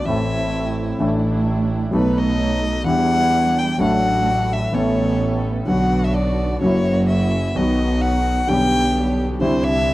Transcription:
0.05 0.96 A1 medium
0.05 0.96 A2 medium
0.05 0.95 E3 medium
0.05 0.95 A3 medium
0.05 0.96 A3 medium
0.05 0.96 C4 medium
0.05 0.96 E4 medium
0.05 0.97 A4 medium
0.05 0.99 E5 medium
0.98 1.89 A1 medium
0.98 1.89 A2 medium
0.98 1.88 E3 medium
0.98 1.88 A3 medium
0.98 1.89 A3 medium
0.98 1.89 D4 medium
0.98 1.89 E4 medium
0.98 1.90 A4 medium
1.91 2.81 B1 medium
1.91 2.82 B1 medium
1.91 2.82 B2 medium
1.91 2.81 F#3 medium
1.91 2.82 A3 medium
1.91 2.81 B3 medium
1.91 2.82 B3 medium
1.91 2.82 D#4 medium
1.91 2.82 A4 medium
1.91 2.20 B4 medium
2.18 2.86 D#5 loud
2.84 3.75 E2 medium
2.84 3.76 E2 medium
2.84 2.85 E3 medium
2.84 3.75 E3 medium
2.84 3.75 G3 medium
2.84 3.75 B3 medium
2.84 3.75 D4 medium
2.84 3.75 D4 soft
2.84 3.75 E4 medium
2.84 3.60 F#5 loud
2.88 3.76 G4 medium
3.59 3.81 G5 loud
3.78 4.69 A1 medium
3.78 4.69 A2 medium
3.78 4.68 F#3 medium
3.78 4.68 A3 medium
3.78 4.69 A3 medium
3.78 4.69 D4 medium
3.78 4.69 D4 soft
3.78 4.69 F#4 medium
3.78 4.70 A4 medium
3.78 4.54 F#5 loud
4.53 4.76 E5 medium
4.72 5.63 A1 medium
4.72 5.63 A2 medium
4.72 5.62 E3 medium
4.72 5.63 B3 soft
4.72 5.63 B3 medium
4.72 5.63 C#4 medium
4.72 5.64 C#4 soft
4.72 5.63 A4 medium
4.72 5.45 C#5 medium
4.76 5.64 A4 medium
5.66 6.57 B1 medium
5.66 6.57 B2 medium
5.66 6.56 D3 medium
5.66 6.57 F#3 medium
5.66 6.57 B3 medium
5.66 6.58 B3 medium
5.66 6.57 D4 medium
5.66 6.57 F#4 medium
5.66 6.06 F#5 medium
5.70 6.58 F#4 medium
6.04 6.17 E5 medium
6.15 6.61 D5 medium
6.61 7.51 F#1 medium
6.61 7.51 F#2 medium
6.61 7.50 C#3 medium
6.61 7.51 F#3 medium
6.61 7.51 A#3 medium
6.61 7.52 A#3 soft
6.61 7.51 E4 medium
6.61 7.51 F#4 medium
6.61 7.06 C#5 medium
6.65 7.53 E4 medium
7.09 7.58 E5 medium
7.54 8.44 B1 medium
7.54 8.44 B2 medium
7.54 8.43 D#3 medium
7.54 8.44 F#3 medium
7.54 8.44 B3 medium
7.54 8.44 D#4 medium
7.54 8.44 F#4 medium
7.54 8.02 D#5 medium
7.58 8.45 F#4 medium
8.01 8.50 F#5 medium
8.47 9.37 B1 medium
8.47 9.37 B2 medium
8.47 9.36 D3 medium
8.47 9.37 G3 soft
8.47 9.37 B3 medium
8.47 9.37 D4 medium
8.47 9.37 G4 medium
8.47 9.38 G4 medium
8.47 9.18 G5 loud
9.39 9.94 C2 medium
9.39 9.94 C3 medium
9.39 9.94 D3 medium
9.39 9.94 G3 medium
9.39 9.94 C4 medium
9.39 9.94 D4 medium
9.39 9.94 E4 medium
9.39 9.66 C5 medium
9.44 9.94 E4 medium
9.64 9.94 E5 loud

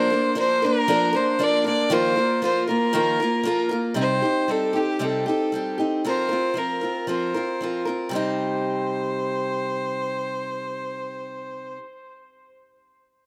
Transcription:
0.00 0.12 F3 medium
0.00 0.12 A#3 medium
0.00 0.11 D4 medium
0.00 0.35 C5 loud
0.10 0.35 A#3 soft
0.10 0.35 D4 medium
0.10 0.37 A#4 medium
0.35 0.62 F3 medium
0.35 0.62 A#3 medium
0.35 0.63 D4 medium
0.35 0.61 A#4 medium
0.39 0.66 C5 loud
0.62 0.87 A#3 soft
0.62 0.88 D4 soft
0.62 0.88 A#4 medium
0.62 1.17 A#4 loud
0.88 1.14 F3 medium
0.88 1.14 A#3 medium
0.88 1.13 D4 medium
0.88 1.12 A#4 medium
1.13 1.38 A#3 medium
1.13 1.39 D4 medium
1.13 1.39 A#4 medium
1.13 1.45 C5 medium
1.39 1.65 F3 medium
1.39 1.65 A#3 medium
1.39 1.65 D4 medium
1.39 1.63 A#4 medium
1.43 1.66 D5 loud
1.64 1.90 A#3 soft
1.64 1.92 D4 soft
1.64 1.90 A#4 medium
1.64 1.94 D5 medium
1.90 2.16 D#3 medium
1.90 2.16 F3 medium
1.90 2.17 A#3 medium
1.90 2.16 F4 loud
1.90 2.14 A#4 medium
1.90 2.43 C5 loud
2.16 2.41 A#3 soft
2.16 2.42 F4 soft
2.16 2.42 A#4 medium
2.42 2.68 F3 medium
2.42 2.68 A#3 medium
2.42 2.68 F4 medium
2.42 2.66 A#4 medium
2.42 2.67 C5 loud
2.67 2.92 A#3 soft
2.67 2.93 F4 soft
2.67 2.94 A#4 medium
2.67 3.67 A#4 medium
2.93 3.19 D#3 medium
2.93 3.19 F3 medium
2.93 3.19 A#3 medium
2.93 3.20 F4 medium
2.93 3.19 A#4 medium
3.20 3.44 A#3 medium
3.20 3.45 F4 medium
3.20 3.46 A#4 medium
3.43 3.70 F3 medium
3.43 3.71 A#3 medium
3.43 3.70 F4 medium
3.47 3.68 A#4 medium
3.69 3.96 A#3 soft
3.69 3.96 F4 medium
3.69 3.96 A#4 medium
3.94 4.21 C3 medium
3.94 4.22 G3 medium
3.94 4.22 C4 medium
3.94 4.22 D#4 medium
3.94 4.21 G4 medium
4.01 4.52 C5 loud
4.22 4.48 C4 soft
4.22 4.48 D#4 soft
4.22 4.48 G4 medium
4.48 4.74 G3 medium
4.48 4.75 C4 medium
4.48 4.74 D#4 medium
4.48 4.72 G4 medium
4.48 4.78 A4 medium
4.73 4.99 C4 soft
4.73 5.00 D#4 soft
4.73 4.99 G4 soft
4.73 5.04 G4 medium
4.99 5.25 C3 medium
4.99 5.26 G3 medium
4.99 5.26 C4 medium
4.99 5.26 D#4 medium
4.99 5.25 G4 medium
4.99 5.27 A4 medium
5.26 5.52 C4 soft
5.26 5.53 D#4 soft
5.26 5.52 G4 medium
5.26 5.75 A4 medium
5.52 5.78 G3 medium
5.52 5.79 C4 medium
5.52 5.78 D#4 medium
5.52 5.77 G4 medium
5.78 6.04 C4 soft
5.78 6.04 D#4 soft
5.78 6.04 G4 soft
6.04 6.30 F3 medium
6.04 6.30 C4 medium
6.04 6.30 F4 medium
6.04 6.28 A#4 medium
6.04 6.59 C5 loud
6.29 6.56 F4 soft
6.29 6.55 A#4 soft
6.33 6.54 C4 soft
6.54 6.81 F3 medium
6.54 6.81 C4 medium
6.54 6.82 F4 medium
6.54 6.80 A#4 medium
6.54 7.08 A#4 medium
6.81 7.07 C4 soft
6.81 7.08 F4 soft
6.81 7.07 A#4 soft
7.07 7.33 F3 medium
7.07 7.34 C4 medium
7.07 7.34 F4 medium
7.07 7.33 A#4 medium
7.07 7.82 C5 medium
7.34 7.61 C4 soft
7.34 7.61 F4 soft
7.34 7.60 A#4 medium
7.61 7.86 F3 medium
7.61 7.87 C4 medium
7.61 7.86 F4 medium
7.61 7.84 A#4 medium
7.85 8.12 C4 soft
7.85 8.12 F4 soft
7.85 8.11 A#4 medium
8.09 11.77 C3 medium
8.09 11.79 G3 medium
8.09 11.81 C4 medium
8.09 11.76 C5 medium
8.15 11.83 D#4 medium
8.15 11.84 G4 medium

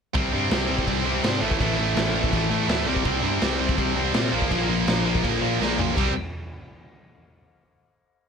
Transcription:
0.14 0.30 C2 loud
0.14 0.31 C3 medium
0.14 0.32 G3 medium
0.14 0.33 C4 loud
0.14 kick loud
0.14 crash medium
0.33 0.48 G2 loud
0.33 0.50 C3 medium
0.33 0.51 G3 medium
0.33 0.52 C4 medium
0.51 0.67 C2 loud
0.51 0.67 C3 medium
0.51 0.68 G3 medium
0.51 0.69 C4 loud
0.51 snare loud
0.51 crash medium
0.68 0.85 C2 medium
0.68 0.86 C3 loud
0.68 0.86 G3 loud
0.68 0.88 C4 loud
0.79 kick loud
0.87 1.18 C2 medium
0.87 1.04 C3 medium
0.87 1.05 G3 loud
0.87 1.06 C4 medium
0.87 kick loud
0.87 crash medium
1.06 1.23 C3 medium
1.06 1.23 G3 medium
1.06 1.24 C4 medium
1.24 1.39 G#2 medium
1.24 1.41 C3 loud
1.24 1.41 G3 loud
1.24 1.42 C4 loud
1.24 snare loud
1.24 crash medium
1.42 1.57 A1 medium
1.42 1.58 A2 loud
1.42 1.60 E3 loud
1.42 1.59 A3 loud
1.51 kick medium
1.60 1.75 A1 loud
1.60 1.77 A2 loud
1.60 1.78 E3 loud
1.60 1.77 A3 loud
1.60 kick loud
1.60 crash medium
1.78 1.93 A1 loud
1.78 1.94 A2 medium
1.78 1.96 E3 medium
1.78 1.95 A3 loud
1.96 2.11 A1 loud
1.96 2.13 A2 medium
1.96 2.14 E3 medium
1.96 2.14 A3 medium
1.96 snare loud
1.96 crash medium
2.14 2.30 A1 medium
2.14 2.31 A2 loud
2.14 2.32 E3 loud
2.14 2.32 A3 loud
2.24 kick medium
2.33 2.48 A1 medium
2.33 2.49 A2 medium
2.33 2.50 E3 medium
2.33 2.50 A3 medium
2.33 kick medium
2.33 crash medium
2.50 2.65 A2 medium
2.50 2.68 A2 medium
2.50 2.68 E3 medium
2.50 2.69 A3 medium
2.68 2.84 D2 medium
2.68 2.86 A2 loud
2.68 2.87 E3 loud
2.68 2.87 A3 loud
2.68 snare loud
2.68 crash medium
2.86 3.02 C2 medium
2.86 3.04 C3 loud
2.86 3.04 G3 loud
2.86 3.04 C4 loud
2.96 kick medium
3.05 3.21 C2 medium
3.05 3.22 C3 loud
3.05 3.22 G3 loud
3.05 3.23 C4 loud
3.05 kick loud
3.05 crash medium
3.23 3.38 G2 loud
3.23 3.40 C3 medium
3.23 3.41 G3 medium
3.23 3.41 C4 medium
3.41 3.57 C2 loud
3.41 3.59 C3 medium
3.41 3.59 G3 medium
3.41 3.59 C4 medium
3.41 snare loud
3.41 crash medium
3.59 3.75 C2 medium
3.59 3.76 C3 loud
3.59 3.77 G3 loud
3.59 3.77 C4 loud
3.69 kick medium
3.77 4.08 C2 medium
3.77 3.94 C3 medium
3.77 3.95 G3 medium
3.77 3.95 C4 loud
3.77 kick medium
3.77 crash medium
3.96 4.13 C3 medium
3.96 4.13 G3 medium
3.96 4.13 C4 medium
4.13 4.29 A#2 medium
4.13 4.32 C3 loud
4.13 4.32 G3 loud
4.13 4.32 C4 loud
4.13 snare loud
4.13 crash medium
4.32 4.48 A#1 medium
4.32 4.50 A#2 loud
4.32 4.50 F3 loud
4.32 4.51 A#3 loud
4.42 kick medium
4.51 4.66 A#1 loud
4.51 4.68 A#2 loud
4.51 4.69 F3 medium
4.51 4.69 A#3 loud
4.51 kick medium
4.51 crash medium
4.69 4.84 A#1 medium
4.69 4.86 A#2 medium
4.69 4.86 F3 medium
4.69 4.86 A#3 medium
4.87 5.03 A#1 loud
4.87 5.03 A#2 medium
4.87 5.04 F3 medium
4.87 5.04 A#3 medium
4.87 snare loud
4.87 crash medium
5.05 5.21 A#1 medium
5.05 5.22 A#2 medium
5.05 5.23 F3 loud
5.05 5.23 A#3 loud
5.15 kick medium
5.23 5.39 A#1 medium
5.23 5.40 A#2 medium
5.23 5.41 F3 loud
5.23 5.41 A#3 loud
5.23 kick medium
5.23 crash medium
5.41 5.58 A#2 medium
5.41 5.57 A#2 loud
5.41 5.59 F3 medium
5.41 5.59 A#3 medium
5.60 5.75 A#1 medium
5.60 5.76 A#2 loud
5.60 5.77 F3 loud
5.60 5.77 A#3 loud
5.60 snare medium
5.77 5.94 A#1 medium
5.77 5.95 A#2 medium
5.77 5.96 F3 medium
5.77 5.96 A#3 loud
5.77 floor tom loud
5.95 6.14 C2 loud
5.95 6.11 C3 loud
5.95 6.11 G3 loud
5.95 6.11 C4 loud
5.95 kick loud
5.95 crash medium

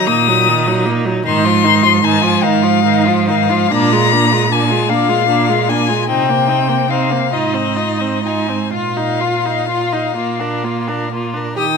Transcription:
0.00 1.22 D#4 medium
0.06 1.06 A#2 medium
0.06 0.29 A#3 medium
0.06 0.86 D#6 medium
0.28 0.49 F#3 medium
0.48 0.69 D#3 medium
0.67 0.87 F#3 medium
0.86 1.07 A#3 medium
1.06 1.25 F#3 medium
1.26 2.29 G#2 medium
1.26 1.47 D#3 medium
1.26 1.46 D#4 medium
1.26 2.06 C6 loud
1.45 1.66 F3 medium
1.45 1.66 F4 medium
1.64 1.86 D#3 soft
1.64 1.84 D#4 medium
1.83 2.03 F3 medium
1.83 2.01 F4 medium
2.02 2.25 D#3 medium
2.02 2.23 D#4 medium
2.02 2.45 G#5 medium
2.21 2.45 F3 medium
2.21 2.44 F4 medium
2.43 3.57 G#2 medium
2.43 2.65 D#3 medium
2.43 2.64 D#4 medium
2.43 3.27 F5 medium
2.62 2.85 F3 medium
2.62 2.83 F4 soft
2.84 3.09 D#3 medium
2.84 3.07 D#4 medium
3.05 3.31 F3 medium
3.05 3.29 F4 soft
3.27 3.52 D#3 medium
3.27 3.51 D#4 medium
3.27 3.72 F5 medium
3.49 3.72 F3 medium
3.49 3.70 F4 soft
3.71 4.76 A#2 medium
3.71 3.94 A#3 medium
3.71 3.94 D4 medium
3.71 4.53 A#5 loud
3.93 4.14 G#3 medium
3.93 4.14 F4 medium
4.12 4.34 A#3 medium
4.12 4.34 D4 medium
4.32 4.52 G#3 medium
4.32 4.51 F4 soft
4.51 4.72 A#3 soft
4.51 4.72 D4 medium
4.51 4.91 G#5 medium
4.71 4.92 G#3 soft
4.71 4.91 F4 medium
4.89 5.94 A#2 medium
4.89 5.10 A#3 medium
4.89 5.11 D4 medium
4.89 5.70 F5 medium
5.08 5.28 G#3 medium
5.08 5.28 F4 medium
5.29 5.50 A#3 medium
5.29 5.50 D4 soft
5.49 5.71 G#3 soft
5.49 5.70 F4 soft
5.69 5.91 A#3 medium
5.69 5.90 D4 medium
5.69 6.08 G#5 medium
5.89 6.09 G#3 soft
5.89 6.08 F4 soft
6.08 7.18 C3 medium
6.08 6.31 C4 medium
6.08 6.31 D#4 medium
6.08 6.91 G5 medium
6.29 6.51 A#3 soft
6.29 6.49 C4 soft
6.48 6.70 C4 soft
6.48 6.70 D#4 soft
6.68 6.90 A#3 soft
6.68 6.89 C4 soft
6.90 7.13 C4 soft
6.90 7.13 D#4 soft
6.90 7.35 F5 medium
7.11 7.32 A#3 soft
7.11 7.32 C4 soft
7.32 8.56 G#2 medium
7.32 7.55 D#4 soft
7.32 7.56 F4 soft
7.32 8.27 D#5 medium
7.54 7.78 C4 soft
7.54 7.78 D#4 soft
7.77 8.02 D#4 soft
7.77 8.00 F4 soft
7.99 8.23 C4 soft
7.99 8.24 D#4 soft
8.23 8.50 D#4 soft
8.23 8.49 F4 soft
8.23 8.73 G#5 medium
8.47 8.72 C4 soft
8.47 8.72 D#4 soft
8.72 9.99 A#2 medium
8.72 8.98 F4 soft
8.72 11.09 F5 medium
8.97 9.22 D#4 soft
9.21 9.47 F4 soft
9.45 9.69 D#4 soft
9.45 9.68 D#4 soft
9.68 9.94 F4 soft
9.93 10.15 D#4 soft
9.93 10.16 D#4 soft
10.16 11.41 A#2 soft
10.16 10.42 A#3 soft
10.16 10.42 F4 soft
10.40 10.65 D4 soft
10.40 10.66 A#4 soft
10.64 10.89 A#3 soft
10.64 10.89 F4 soft
10.88 11.11 D4 soft
10.88 11.12 A#4 soft
11.12 11.35 A#3 soft
11.12 11.38 F4 soft
11.34 11.55 D4 soft
11.34 11.58 A#4 soft
11.56 11.77 D#3 medium
11.56 11.64 G4 medium
11.56 11.77 G5 medium
11.56 11.77 D#6 loud

